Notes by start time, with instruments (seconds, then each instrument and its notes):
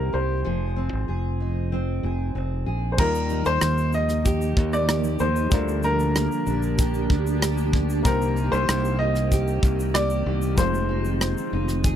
Already playing: steel-string acoustic guitar C3 G3 A#3 D#4 G4, upright piano A#4
0.13 fingered electric bass C2, steel-string acoustic guitar G4, upright piano C5
0.44 fingered electric bass F1, steel-string acoustic guitar F3 G#4
0.76 steel-string acoustic guitar C4
0.93 fingered electric bass G#1
1.08 fingered electric bass F1, steel-string acoustic guitar G#4
1.40 steel-string acoustic guitar D#4
1.72 steel-string acoustic guitar C4
2.03 fingered electric bass F1, steel-string acoustic guitar G#4
2.35 fingered electric bass F1, steel-string acoustic guitar C4
2.66 fingered electric bass A#1, steel-string acoustic guitar G#4
2.92 upright piano C5
2.97 fingered electric bass D#2, steel-string acoustic guitar D#3, ambient pad F3 A#3 D#4 G4, grand piano G3 D#4 F4 A#4, upright piano A#4, kick, crash
3.15 shaker
3.29 steel-string acoustic guitar D#4, shaker
3.45 fingered electric bass D#2, upright piano C5, shaker
3.61 fingered electric bass D#2, steel-string acoustic guitar A#3, cross-stick, shaker
3.78 shaker
3.93 steel-string acoustic guitar D#4, upright piano D#5, shaker
4.09 cross-stick, shaker
4.25 steel-string acoustic guitar G4, kick, shaker
4.42 shaker
4.57 fingered electric bass D#2, steel-string acoustic guitar D#4, kick
4.73 upright piano D5, shaker
4.88 steel-string acoustic guitar G4, cross-stick, shaker
5.04 shaker
5.19 fingered electric bass D#2, steel-string acoustic guitar D#4, upright piano C5, shaker
5.36 shaker
5.50 fingered electric bass D2, steel-string acoustic guitar D3, ambient pad F3 A#3 D4, grand piano G3 D4 F4 A#4, kick, shaker
5.68 shaker
5.83 steel-string acoustic guitar D4, upright piano A#4, shaker
6.00 shaker
6.16 steel-string acoustic guitar A#3, cross-stick, shaker
6.32 shaker
6.46 fingered electric bass A#1, steel-string acoustic guitar D4, shaker
6.63 shaker
6.78 steel-string acoustic guitar G4, kick, shaker
6.94 shaker
7.10 fingered electric bass D2, steel-string acoustic guitar D4, kick
7.27 shaker
7.41 steel-string acoustic guitar G4, cross-stick, shaker
7.57 shaker
7.73 steel-string acoustic guitar D4, kick
7.90 shaker
8.03 fingered electric bass C2, steel-string acoustic guitar C3, ambient pad D#3 A#3 C4, grand piano A#3 D#4 G4 C5, upright piano A#4, kick, shaker
8.22 shaker
8.36 steel-string acoustic guitar D#4, shaker
8.52 fingered electric bass C2, upright piano C5, shaker
8.68 fingered electric bass C2, steel-string acoustic guitar A#3, cross-stick, shaker
8.85 shaker
8.99 steel-string acoustic guitar D#4, upright piano D#5
9.15 cross-stick, shaker
9.32 steel-string acoustic guitar G4, kick, shaker
9.48 shaker
9.63 fingered electric bass C2, steel-string acoustic guitar D#4, kick, shaker
9.80 shaker
9.94 steel-string acoustic guitar G4, upright piano D5, cross-stick, shaker
10.10 shaker
10.26 fingered electric bass C2, steel-string acoustic guitar D#4
10.42 shaker
10.55 fingered electric bass F1, steel-string acoustic guitar F3, grand piano G#3 D#4 F4, ambient pad G#3 F4, upright piano C5, kick, shaker
10.59 grand piano C5
10.74 shaker
10.89 steel-string acoustic guitar D#4
11.05 shaker
11.21 steel-string acoustic guitar C4, cross-stick, shaker
11.37 shaker
11.53 fingered electric bass F1, steel-string acoustic guitar D#4
11.68 cross-stick, shaker
11.84 steel-string acoustic guitar G#4, kick, shaker